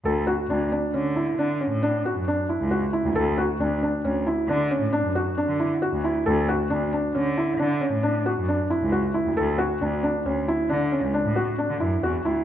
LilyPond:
<<
  \new Staff \with { instrumentName = "Felt piano" } { \time 7/4 \key d \major \tempo 4 = 135 a'8 fis'8 d'8 d'8 cis'8 e'8 d'8 cis'8 d'8 fis'8 d'8 e'8 fis'8 e'8 | a'8 fis'8 d'8 d'8 cis'8 e'8 d'8 cis'8 d'8 fis'8 d'8 e'8 fis'8 e'8 | a'8 fis'8 d'8 d'8 cis'8 e'8 d'8 cis'8 d'8 fis'8 d'8 e'8 fis'8 e'8 | a'8 fis'8 d'8 d'8 cis'8 e'8 d'8 cis'8 d'8 fis'8 d'8 e'8 fis'8 e'8 | }
  \new Staff \with { instrumentName = "Cello" } { \clef bass \time 7/4 \key d \major d,8 r8 d,8 r8 d4 d8. a,4 fis,8 r8 cis,8 r8 d,16 | d,8 r8 d,8 r8 d,8 r8 d8. a,16 r16 fis,8 r8 d8 r8 d,8 r16 | d,8 r8 d,8 r8 d4 d8. a,4 fis,8 r8 cis,8 r8 d,16 | d,8 r8 d,8 r8 d,8 r8 d8. cis,16 r16 a,8 r8 d16 fis,8 e,8 d,8 | }
>>